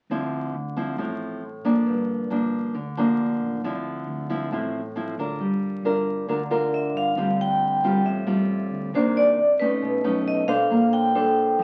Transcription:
0.10 D2 D3 F3 C4 E4
0.54 D2
0.77 F3 C4 E4
0.98 A1 A2 F3 C4 E4
1.64 A1 F3 A#3 D4
1.86 G1 G2
2.30 G1 F3 A#3 D4
2.75 D2 D3
2.97 F3 A#3 D4
3.41 A1
3.63 D2 D3 F3 C4 E4
4.07 D2
4.30 F3 C4 E4
4.51 A1 A2 F3 C4 E4
4.96 F3 C4 E4
5.18 D2 D4 F4 A#4
5.39 G1 G3
5.83 G1 D4 F4 A#4
6.28 D2 D3 D4 F4 A#4
6.50 D4 F4 A#4
6.74 E5
6.94 G1 F5
7.16 D2 D3 G3 C4 F4
7.41 G5
7.84 G3 C4 F4
8.05 A1 A2 E5
8.27 A1 G3 C4 F4
8.71 D2
8.93 C2 C3 D#3 A#3 D4 C5
9.17 D5
9.60 A3 C#4 D#4 B4
9.82 B1 B2
10.04 F#2 A3 C#4 D#4
10.28 D#5
10.47 B1 D4 A4 C5 F5
10.70 A#1 A#3
10.93 G5
11.15 D4 A4 C5
11.59 F2 F3

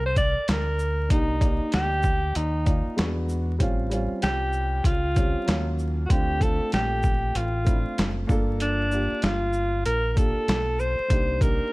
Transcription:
Already playing: C2
0.06 C5
0.16 D5, kick, closed hi-hat, shaker
0.37 muted fingered electric bass stroke
0.48 D2 A#4, snare, closed hi-hat
0.79 shaker
1.09 C2 A#3 D4 D#4 G4, kick, closed hi-hat
1.40 A#3 D#4 D5, kick, closed hi-hat, shaker
1.44 G4
1.62 muted fingered electric bass stroke
1.72 D2 G4, snare, closed hi-hat
2.03 kick, shaker
2.35 D#2 D#4, closed hi-hat
2.65 A#3 D#4 F4 D5, kick, closed hi-hat, shaker
2.87 muted fingered electric bass stroke
2.96 E2 G#3 B3 D4 F#4, snare, closed hi-hat
3.29 shaker
3.59 A1 G3 C4 C#4 F4, kick, closed hi-hat
3.90 G3 C4 C#4 F4, closed hi-hat, shaker
4.12 muted fingered electric bass stroke
4.22 C2 G4, snare, closed hi-hat
4.53 shaker
4.84 C#2 F4, kick, closed hi-hat
5.15 G3 C4 C#4 G4, kick, closed hi-hat, shaker
5.37 muted fingered electric bass stroke
5.46 D#2 F#3 A#3 C#4 F4, snare, closed hi-hat
5.79 shaker
6.06 A3 F#4
6.10 D2 C4 D4 F4 G4, kick, closed hi-hat
6.40 A3 C4 D4 F4 A4, kick, closed hi-hat, shaker
6.62 muted fingered electric bass stroke
6.72 A#1 G4, snare, closed hi-hat
7.03 kick, shaker
7.35 A1 F4, closed hi-hat
7.65 A3 C4 D4 E4, kick, closed hi-hat, shaker
7.75 F4
7.87 muted fingered electric bass stroke
7.98 F#1, snare, closed hi-hat
8.27 G1 A#3 D4 F4 A4, kick, shaker
8.60 D4, closed hi-hat
8.90 A#3 D4 F4 G4, shaker
9.22 G1 F4, snare, closed hi-hat
9.53 shaker
9.86 A#1 A#4, closed hi-hat
10.12 A#3 D4 A#4
10.17 F4 G4 A4, kick, closed hi-hat, shaker
10.37 muted fingered electric bass stroke
10.48 B1, snare, closed hi-hat
10.79 C5, shaker
10.99 muted fingered electric bass stroke
11.08 C2 A#3 D4 D#4 G4, kick, closed hi-hat
11.40 A#3 D4 D#4 G4 A#4, kick, closed hi-hat, shaker

